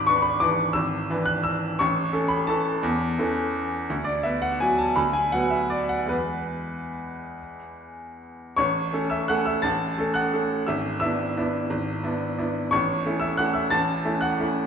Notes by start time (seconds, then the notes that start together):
Already playing: G#1 D6
0.07 D4 B4 C#6
0.22 B5
0.40 E3 D4 B4 D6
0.73 G#1 E6
1.10 E3 D4 B4
1.26 F#6
1.44 E6
1.79 A1 C#6
2.13 C#4 A4
2.28 B5
2.47 E3 C#4 A4 A5
2.83 E2
3.19 E3 C#4 A4
3.90 D2
4.04 D5
4.23 B3 B4 E5
4.42 F#5
4.60 F#3 B3 B4 G#5
4.78 A5
4.96 D2 B5
5.13 G#5
5.32 F#3 B3 B4 F#5
5.50 E5
5.70 D5
5.89 F#5
6.06 E2 G#3 B3 B4
8.57 A1 C#5 C#6
8.93 A3 C#4 A4
9.10 E5 E6
9.28 A3 C#4 A4 F#5 F#6
9.46 E5 E6
9.62 A1 A5 A6
9.98 A3 C#4 A4
10.14 F#5 F#6
10.33 A3 C#4 A4
10.67 G#1 E5 E6
11.00 B3 D4 E4 E5 E6
11.37 B3 D4 E4
11.70 G#1
12.03 B3 D4 E4
12.38 B3 D4 E4
12.71 A1 C#5 C#6
13.06 A3 C#4 E4
13.20 E5 E6
13.37 A3 C#4 E4 F#5 F#6
13.54 E5 E6
13.70 A1 A5 A6
14.05 A3 C#4 E4
14.21 F#5 F#6
14.40 A3 C#4 E4